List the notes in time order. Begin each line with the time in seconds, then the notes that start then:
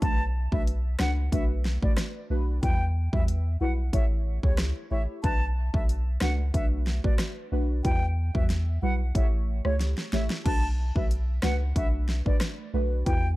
0.02 B1 A3 D4 F#4 B4 A5, kick, closed hi-hat
0.52 B1 A3 D4 F#4 B4 E5, kick
0.67 closed hi-hat
0.99 C#2 A3 D4 F#4 B4 F#5, cross-stick, snare
1.32 B1 A3 D4 F#4 B4 E5, kick, closed hi-hat
1.65 snare
1.82 A1 A3 D4 F#4 B4 D5, kick
1.97 cross-stick, snare, closed hi-hat
2.30 B1 A3 D4 F#4 B4
2.63 E2 G3 E4 F#4 B4 G5, kick, closed hi-hat
3.13 E2 G3 E4 F#4 B4 E5, kick
3.28 closed hi-hat
3.61 B1 G3 E4 F#4 B4 F#5
3.93 A1 A3 E4 G4 C#5 E5, kick, closed hi-hat
4.43 C#2 A3 E4 G4 C#5, kick
4.58 cross-stick, snare, closed hi-hat
4.91 A1 A3 E4 G4 C#5 E5
5.23 B1 A3 D4 F#4 B4 A5, kick, closed hi-hat
5.73 B1 A3 D4 F#4 B4 E5, kick
5.89 closed hi-hat
6.21 C#2 A3 D4 F#4 B4 F#5, cross-stick, snare
6.54 B1 A3 D4 F#4 B4 E5, kick, closed hi-hat
6.87 snare
7.04 A1 A3 D4 F#4 B4 D5, kick
7.18 cross-stick, snare, closed hi-hat
7.52 B1 A3 D4 F#4 B4
7.84 E2 G3 E4 F#4 B4 G5, kick, closed hi-hat
8.34 E2 G3 E4 F#4 B4 E5, kick
8.50 snare, closed hi-hat
8.82 B1 G3 E4 F#4 B4 F#5
9.15 A1 A3 E4 G4 C#5 E5, kick, closed hi-hat
9.65 C#2 A3 E4 G4 C#5, cross-stick
9.80 snare, closed hi-hat
9.98 snare
10.13 A1 A3 E4 G4 C#5 E5, snare
10.30 snare
10.45 B1 A3 D4 F#4 B4 A5, kick, closed hi-hat, crash
10.95 B1 A3 D4 F#4 B4 E5, kick
11.11 closed hi-hat
11.42 C#2 A3 D4 F#4 B4 F#5, cross-stick, snare
11.76 B1 A3 D4 F#4 B4 E5, kick, closed hi-hat
12.09 snare
12.26 A1 A3 D4 F#4 B4 D5, kick
12.40 cross-stick, snare, closed hi-hat
12.73 B1 A3 D4 F#4 B4
13.06 E2 G3 E4 F#4 B4 G5, kick, closed hi-hat